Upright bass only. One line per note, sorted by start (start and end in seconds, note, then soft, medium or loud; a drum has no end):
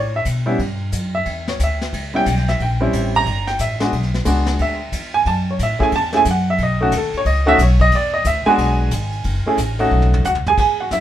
0.00 0.25 A2 medium
0.26 0.58 B2 medium
0.59 0.92 G2 medium
0.92 1.25 F#2 medium
1.26 1.59 E2 medium
1.59 1.92 D2 medium
1.93 2.25 C#2 medium
2.26 2.58 B1 loud
2.60 2.92 A#1 medium
2.93 3.25 A1 medium
3.26 3.58 G1 medium
3.59 3.92 A1 medium
3.92 4.25 B1 medium
4.26 4.58 C#2 medium
4.59 4.91 D2 medium
4.93 5.25 E2 medium
5.26 5.58 F#2 medium
5.59 5.79 A2 loud
5.80 muted upright bass stroke soft
5.92 6.24 E2 medium
6.25 6.58 F#2 loud
6.59 6.91 B1 medium
6.92 7.12 D#2 medium
7.13 muted upright bass stroke soft
7.25 7.58 C#2 medium
7.58 7.91 B1 loud
7.92 8.24 E2 medium
8.25 8.45 D2 loud
8.46 muted upright bass stroke soft
8.58 8.91 B1 medium
8.91 9.24 G#1 loud
9.25 9.45 F#1 medium
9.46 muted upright bass stroke soft
9.57 9.90 A1 loud
9.91 10.24 B1 medium
10.25 10.57 C#2 loud
10.58 10.90 E2 medium
10.90 11.00 F#2 medium